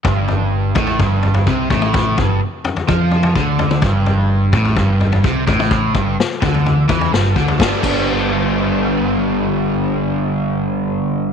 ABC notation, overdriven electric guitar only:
X:1
M:4/4
L:1/8
Q:1/4=127
K:Gmix
V:1 name="Overdriven electric guitar" clef=bass
G,,3 A,, G,,2 C, A,,- | A,, G,, z2 F,2 D,2 | G,,3 A,, G,,2 C, A,,- | A,, G,, z D,2 E, G,, D, |
[G,,D,G,B,D] [G,,D,G,B,D]6- [G,,D,G,B,D]- | [G,,D,G,B,D]8 |]